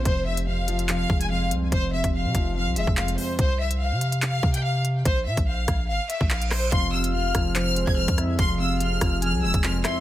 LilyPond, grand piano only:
\new Staff \with { instrumentName = "Grand piano" } { \clef bass \time 4/4 \key f \minor \tempo 4 = 144 f,8 c8 f,8 f8 f,8 aes8 f,8 c'8 | f,8 c8 f,8 f8 f,8 aes8 f,8 c'8 | r1 | r1 |
f,8 c8 f,8 f8 f,8 aes8 f,8 c'8 | f,8 c8 f,8 f8 f,8 aes8 f,8 c'8 | }